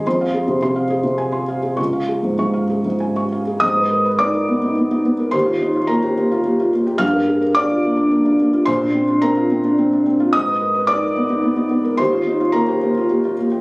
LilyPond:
\new Staff \with { instrumentName = "Felt piano" } { \time 3/4 \key aes \lydian \tempo 4 = 108 << { c'''16 f''16 aes'16 c16 c'''16 f''16 aes'16 c16 aes''16 c'''16 f''16 aes'16 | des'''16 f''16 aes'16 aes,16 des'''16 f''16 aes'16 aes,16 aes''16 des'''16 f''16 aes'16 | <ees'' ees'''>4 <d'' d'''>2 | <c'' c'''>4 <bes' bes''>4. r8 |
<f'' f'''>4 <d'' d'''>2 | <c'' c'''>4 <bes' bes''>4. r8 | <ees'' ees'''>4 <d'' d'''>2 | <c'' c'''>4 <bes' bes''>4. r8 | } \\ { f,4 c2 | des,4 aes,2 | aes,16 ces''16 bes'16 ces''16 ees'16 bes'16 ces'16 ees'16 ces'16 ees'16 ces'16 bes'16 | ees,16 f'16 ees'16 f'16 bes16 g'16 bes16 f'16 bes16 f'16 bes16 g'16 |
g,16 bes'16 aes'16 bes'16 d'16 f'16 bes16 d'16 bes16 d'16 bes16 f'16 | bes,16 d'16 c'16 d'16 c'16 f'16 c'16 d'16 c'16 d'16 c'16 f'16 | aes,16 ces''16 bes'16 ces''16 ees'16 bes'16 ces'16 ees'16 ces'16 ees'16 ces'16 bes'16 | ees,16 f'16 ees'16 f'16 bes16 g'16 bes16 f'16 bes16 f'16 bes16 g'16 | } >> }